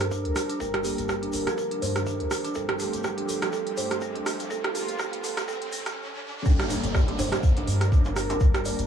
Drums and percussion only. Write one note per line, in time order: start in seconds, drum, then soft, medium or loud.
0.00 cross-stick medium
0.00 closed hi-hat medium
0.00 shaker soft
0.11 kick loud
0.11 shaker medium
0.25 closed hi-hat soft
0.36 cross-stick medium
0.36 open hi-hat medium
0.36 shaker medium
0.49 closed hi-hat medium
0.49 shaker soft
0.60 kick loud
0.60 shaker medium
0.74 cross-stick loud
0.74 closed hi-hat soft
0.84 open hi-hat medium
0.84 shaker loud
0.98 closed hi-hat medium
0.98 shaker soft
1.09 kick loud
1.09 cross-stick medium
1.09 shaker medium
1.23 closed hi-hat soft
1.33 open hi-hat medium
1.33 shaker medium
1.47 cross-stick medium
1.47 closed hi-hat medium
1.47 shaker soft
1.58 kick loud
1.58 shaker medium
1.71 closed hi-hat soft
1.82 open hi-hat medium
1.82 shaker medium
1.96 cross-stick medium
1.96 closed hi-hat medium
1.96 shaker soft
2.07 kick loud
2.07 shaker medium
2.20 closed hi-hat soft
2.31 cross-stick medium
2.31 open hi-hat medium
2.31 shaker medium
2.45 closed hi-hat medium
2.45 shaker soft
2.55 kick loud
2.55 shaker medium
2.69 cross-stick loud
2.69 closed hi-hat soft
2.79 open hi-hat medium
2.79 shaker medium
2.93 closed hi-hat medium
2.93 shaker soft
3.04 kick loud
3.04 cross-stick medium
3.04 shaker medium
3.18 closed hi-hat soft
3.29 open hi-hat medium
3.29 shaker loud
3.42 cross-stick loud
3.42 closed hi-hat medium
3.42 shaker soft
3.53 kick loud
3.53 shaker medium
3.67 closed hi-hat soft
3.77 open hi-hat medium
3.77 shaker medium
3.91 cross-stick medium
3.91 closed hi-hat medium
3.91 shaker soft
4.01 kick loud
4.01 shaker medium
4.15 closed hi-hat soft
4.26 cross-stick medium
4.26 open hi-hat medium
4.26 shaker medium
4.40 closed hi-hat medium
4.40 shaker soft
4.51 kick loud
4.51 shaker medium
4.64 cross-stick loud
4.64 closed hi-hat soft
4.75 open hi-hat medium
4.75 shaker loud
4.88 closed hi-hat medium
4.88 shaker soft
4.99 kick loud
4.99 cross-stick medium
4.99 shaker medium
5.13 closed hi-hat soft
5.24 open hi-hat medium
5.24 shaker medium
5.37 cross-stick loud
5.37 closed hi-hat medium
5.37 shaker soft
5.48 kick loud
5.48 shaker medium
5.62 closed hi-hat soft
5.72 open hi-hat medium
5.72 shaker medium
5.86 cross-stick medium
5.86 closed hi-hat medium
5.86 shaker soft
6.45 kick loud
6.45 shaker soft
6.59 cross-stick loud
6.59 closed hi-hat soft
6.59 shaker soft
6.70 open hi-hat medium
6.70 low bongo medium
6.70 shaker loud
6.84 closed hi-hat medium
6.84 shaker soft
6.95 kick loud
6.95 cross-stick medium
6.95 shaker soft
7.08 closed hi-hat soft
7.08 high bongo medium
7.19 open hi-hat medium
7.19 low bongo medium
7.19 shaker loud
7.32 cross-stick medium
7.32 closed hi-hat medium
7.32 high bongo loud
7.32 shaker soft
7.43 kick loud
7.43 shaker medium
7.57 closed hi-hat soft
7.57 low bongo medium
7.67 open hi-hat loud
7.67 shaker medium
7.81 cross-stick medium
7.81 closed hi-hat medium
7.81 shaker soft
7.92 kick loud
7.92 shaker medium
8.05 low bongo loud
8.05 shaker soft
8.16 cross-stick medium
8.16 open hi-hat medium
8.16 shaker medium
8.30 closed hi-hat medium
8.30 high bongo loud
8.30 shaker soft
8.40 kick loud
8.40 low bongo medium
8.40 shaker medium
8.54 cross-stick loud
8.54 closed hi-hat soft
8.54 shaker soft
8.65 open hi-hat loud
8.65 shaker medium
8.79 closed hi-hat medium
8.79 shaker soft